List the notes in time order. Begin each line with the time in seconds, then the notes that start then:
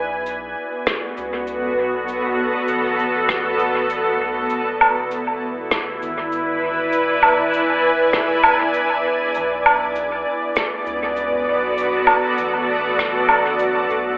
Already playing: B1 B3 E4 B4 D5 G#5
0.26 cabasa
0.40 F#4
0.77 A4
0.87 kick, cross-stick, cabasa
1.17 C#2, cabasa
1.47 cabasa
1.78 B1
2.08 cabasa
2.68 A1, cabasa
2.99 cabasa
3.29 kick, cross-stick, cabasa
3.59 cabasa
3.90 cabasa
4.20 B1
4.50 E1 E4, cabasa
4.81 low woodblock
4.96 D5
5.11 cabasa
5.26 B4
5.71 kick, cross-stick, cabasa
6.02 G#1, cabasa
6.32 cabasa
6.52 G#5
6.93 E1, cabasa
7.23 low woodblock
7.53 cabasa
7.84 E1
8.13 kick, cross-stick, cabasa
8.44 D1, cabasa, low woodblock
8.74 cabasa
9.35 B1 B3, cabasa
9.66 low woodblock
9.95 cabasa
10.19 F#4
10.56 kick, cross-stick, cabasa
10.71 A4
10.86 C#2, cabasa
11.16 cabasa
11.47 B1
11.78 cabasa
12.07 low woodblock
12.38 A1, cabasa
12.99 kick, cross-stick, cabasa
13.29 cabasa, low woodblock
13.59 cabasa
13.90 B1, cabasa